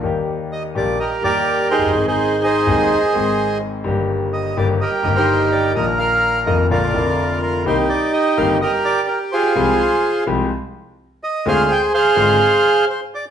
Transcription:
<<
  \new Staff \with { instrumentName = "Bandoneon" } { \time 4/4 \key ees \major \tempo 4 = 126 << { r4 ees''8 d''8 ees''8 d''4 c''8~ | c''16 c''8. ees''2~ ees''8 r8 | r4 ees''8 d''8 ees''8 ees''16 c''8. d''8 | ees''8 f''4 ees''8 d''4. bes'8 |
\key c \minor c''8 d''8 ees''8 f''8 ees''8 d''8 bes'8 c''8~ | c''4. r2 ees''8 | f''8 g''8 f''2 c''8 d''8 | } \\ { r2 <g' bes'>8 <g' bes'>4 <ees' aes'>8~ | <ees' aes'>16 <ees' aes'>8. <aes' c''>2~ <aes' c''>8 r8 | r2 <g' bes'>8. <ees' g'>4~ <ees' g'>16 | bes'8 bes'4. <f' bes'>2 |
<ees' g'>2 <g' bes'>4. <f' aes'>8~ | <f' aes'>4. r2 r8 | <aes' c''>4 <aes' c''>2 r4 | } >> }
  \new Staff \with { instrumentName = "Grand piano" } { \clef bass \time 4/4 \key ees \major << { <ees, ees g bes g'>4. <bes,, bes, ees g bes g'>8 r8 <ees, ees g bes g'>4. | <aes,, aes, ees aes c' aes'>4. <ees,, ees, ees aes c' aes'>8 r8 <aes,, aes, ees aes c' aes'>4. | <g,, g, ees g bes g'>4. <g,, g, ees g bes g'>8 r8 <g,, g, ees g bes g'>4. | <bes,, bes, ees f bes f'>4. <f,, f, ees f bes f'>8 <bes,, bes, d f bes f'>8 <f,, f, d f bes f'>4. |
\key c \minor <c, c ees bes c' g'>8 r4 <g,, g, ees bes c' g'>8 r2 | <c, c f aes c' g'>8 r4 <c, c f aes c' g'>8 r2 | <d, d aes c' f'>8 r4 <aes,, aes, d aes c' f'>8 r2 | } \\ { r2. r8 r32 f,,32 ges,,32 g,,32 | r1 | r1 | r1 |
r1 | r1 | r1 | } >> }
>>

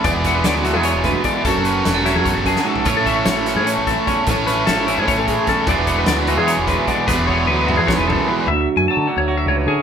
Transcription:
<<
  \new Staff \with { instrumentName = "Clean electric guitar" } { \time 7/8 \key d \lydian \tempo 4 = 149 d''16 b'16 fis''16 b'16 d''16 b'16 fis'16 gis'16 cis''8 b'8 d''8 | a'8 b'8 a'8 e'16 gis'16 cis''16 a'16 gis'8 a'8 | cis''16 a'16 e''16 a'16 cis''16 a'16 fis'16 gis'16 cis''8 a'8 cis''8 | a'8 b'8 a'8 e'16 gis'16 cis''16 a'16 gis'8 a'8 |
d''16 b'16 fis''16 b'16 d''16 b'16 fis'16 gis'16 cis''8 b'8 d''8 | b'8 cis''8 b'8 fis'16 gis'16 cis''16 b'16 a'8 b'8 | e''8 r16 gis''16 a''8 fis''16 cis''8 e''16 cis''16 b'16 gis'8 | }
  \new Staff \with { instrumentName = "Overdriven electric guitar" } { \time 7/8 \key d \lydian <e gis b e' gis' d''>2.~ <e gis b e' gis' d''>8 | <fis cis' fis' a' cis''>2.~ <fis cis' fis' a' cis''>8 | <a cis' e' a' cis''>2.~ <a cis' e' a' cis''>8 | <a cis' e' a' cis''>2.~ <a cis' e' a' cis''>8 |
<e gis b e' gis' d''>2.~ <e gis b e' gis' d''>8 | <e gis b e' gis' d''>2.~ <e gis b e' gis' d''>8 | r2. r8 | }
  \new Staff \with { instrumentName = "Clean electric guitar" } { \clef bass \time 7/8 \key d \lydian << { r8 a16 b16 fis8 a16 b4.~ b16 | r8 cis'8 fis16 a16 cis'2 | r8 cis'4 cis'4. cis'8 | r8 cis'4 cis'4. cis'8 |
<e fis b d'>8 b8 fis8 a16 b8. fis8 b8 | r8 b8 fis8 b2 | r4 fis4 fis'4 cis'8 | } \\ { e,4. e4 d,8 e,8 | fis,4. fis8 e,8 fis,8 gis,8 | a,4. e4. e,8 | a,4. e4. e,8 |
e,4. e4. b,8 | e,4. e8 gis,8 fis,8 e,8 | d,4. d4 a,4 | } >> }
  \new Staff \with { instrumentName = "Fingered electric bass" } { \clef bass \time 7/8 \key d \lydian e,,16 e,,8. d,8. e,8 e,,8 r8. | fis,,16 fis,,8. e,,8. fis,8 fis,,8 r8. | a,,16 a,,8. gis,,8. a,8 a,,8 r8. | a,,16 a,,8. gis,,8. a,8 a,,8 r8. |
e,,16 e,,8. d,8. e,8 e,,8 r8. | e,,16 e,,8. d,8. e,8 e,,8 r8. | d,8 r16 fis,16 r16 d16 r16 d,8. cis,8 d16 r16 | }
  \new DrumStaff \with { instrumentName = "Drums" } \drummode { \time 7/8 <hh bd>8 <hh bd sn>8 <hh sn>8 <hh sn>8 hh8 <hh bd sn>8 <hh bd>8 | <hh bd>8 hh8 <hh sn>8 <hh sn>8 <hh bd>8 <hh bd>16 sn8 tomfh16 | <hh bd>8 <hh bd>8 <hh sn>8 <hh sn>8 hh8 <hh bd sn>8 <hh bd>8 | <hh bd>8 <hh sn>8 <hh sn>8 hh8 <hh bd>8 <hh bd>8 <hh bd sn>8 |
<hh bd>8 <hh bd>8 <hh sn>8 hh8 hh8 <hh bd>8 <hh bd>8 | <hh bd>8 bd8 r8 toml8 <bd sn>8 tomfh4 | r4 r4 r4. | }
>>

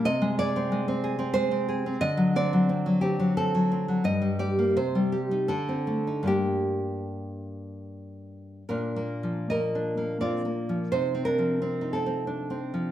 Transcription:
\new Staff \with { instrumentName = "Nylon-string guitar" } { \time 3/4 \key g \minor \tempo 4 = 86 << { ees''8 d''4. c''4 | ees''8 d''4 g'8 a'4 | ees''8 d''8 c''4 a'4 | g'2 r4 |
\key bes \major <d' bes'>4 <bes' ees''>4 <f' d''>4 | <ees' c''>8 <d' bes'>4 <c' a'>4 r8 | } \\ { c16 aes16 aes'16 c'16 aes16 c'16 aes'16 c'16 aes16 c'16 aes'16 c'16 | d16 fis16 c'16 fis16 c'16 fis16 c'16 fis16 c'16 fis16 c'16 fis16 | g,16 g16 g'16 bes16 c16 g16 g'16 ees'16 d16 c'16 a16 ees'16 | <g, bes d'>2. |
\tuplet 3/2 { bes,8 bes8 f8 bes8 d'8 bes8 c'8 bes8 f8 } | \tuplet 3/2 { c8 c'8 f8 c'8 ees'8 c'8 d'8 c'8 f8 } | } >> }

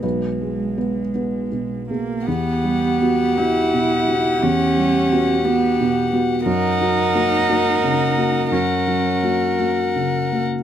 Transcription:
<<
  \new Staff \with { instrumentName = "Violin" } { \time 6/8 \key e \lydian \tempo 4. = 56 r2. | fis''2.~ | fis''2. | fis''2. |
fis''2~ fis''8 r8 | }
  \new Staff \with { instrumentName = "Viola" } { \time 6/8 \key e \lydian r2. | g'2.~ | g'2. | ais'2. |
ais'2~ ais'8 r8 | }
  \new Staff \with { instrumentName = "Cello" } { \time 6/8 \key e \lydian gis2~ gis8 ais8 | b4. e'4. | cis'4. b4 r8 | dis'2. |
cis'4. r4. | }
  \new Staff \with { instrumentName = "Felt piano" } { \time 6/8 \key e \lydian b'4. r4. | r2. | r2. | r2. |
r2. | }
  \new Staff \with { instrumentName = "Felt piano" } { \time 6/8 \key e \lydian b,,8 gis8 <b b'>8 <b b'>8 b,8 <b, gis'>8 | e,8 g8 <b fis'>8 <b fis'>8 b,8 <b fis'>8 | e,8 g8 <b fis'>8 <b fis'>8 b,8 <b fis'>8 | fis,8 fis8 <ais fis'>8 <ais fis'>8 cis8 <ais fis'>8 |
fis,8 fis8 <ais fis'>8 <ais fis'>8 cis8 <ais fis'>8 | }
>>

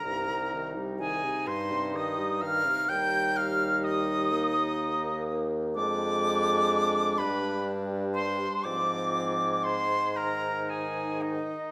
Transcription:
<<
  \new Staff \with { instrumentName = "Flute" } { \time 6/8 \key c \minor \tempo 4. = 42 bes''4 aes''8 c'''8 ees'''8 f'''8 | g'''8 f'''8 ees'''4. r8 | d'''4. b''8 r8 c'''8 | d'''4 c'''8 bes''8 aes''8 ees''8 | }
  \new Staff \with { instrumentName = "Oboe" } { \time 6/8 \key c \minor bes'4 aes'8 c''8 ees''8 f''8 | g''8 f''8 ees''4. r8 | d''4. b'8 r8 c''8 | d''4 c''8 bes'8 aes'8 ees'8 | }
  \new Staff \with { instrumentName = "Clarinet" } { \time 6/8 \key c \minor ees'2. | ees'2. | d'2. | c'4 r8 ees'4. | }
  \new Staff \with { instrumentName = "French horn" } { \clef bass \time 6/8 \key c \minor g,16 c16 ees16 g16 ees16 c16 g,16 c16 ees16 g16 ees16 c16 | g4. bes4. | aes4. g4. | f4~ f16 r16 ees4. | }
  \new Staff \with { instrumentName = "Bassoon" } { \clef bass \time 6/8 \key c \minor c,4. g,4. | ees,2. | f,4. g,4. | aes,2~ aes,8 r8 | }
>>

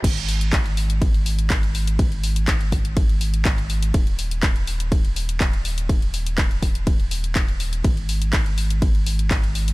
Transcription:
<<
  \new Staff \with { instrumentName = "Analog synth bass" } { \clef bass \time 4/4 \key dis \phrygian \tempo 4 = 123 gis,,1~ | gis,,1 | dis,,1~ | dis,,1 |
gis,,1 | }
  \new DrumStaff \with { instrumentName = "Drums" } \drummode { \time 4/4 <cymc hh bd cymr>16 hh16 hho16 hh16 <hc hh bd cymr>16 hh16 hho16 hh16 <hh bd cymr>16 hh16 hho16 hh16 <hc hh bd cymr>16 hh16 hho16 hh16 | <hh bd cymr>16 hh16 hho16 hh16 <hc hh bd cymr>16 hh16 <hho bd>16 hh16 <hh bd cymr>16 hh16 hho16 hh16 <hc hh bd cymr>16 hh16 hho16 hh16 | <hh bd cymr>16 hh16 hho16 hh16 <hc hh bd cymr>16 hh16 hho16 hh16 <hh bd cymr>16 hh16 hho16 hh16 <hc hh bd cymr>16 hh16 hho16 hh16 | <hh bd cymr>16 hh16 hho16 hh16 <hc hh bd cymr>16 hh16 <hho bd>16 hh16 <hh bd cymr>16 hh16 hho16 hh16 <hc hh bd cymr>16 hh16 hho16 hh16 |
<hh bd cymr>16 hh16 hho16 hh16 <hc hh bd cymr>16 hh16 hho16 hh16 <hh bd cymr>16 hh16 hho16 hh16 <hc hh bd cymr>16 hh16 hho16 hh16 | }
>>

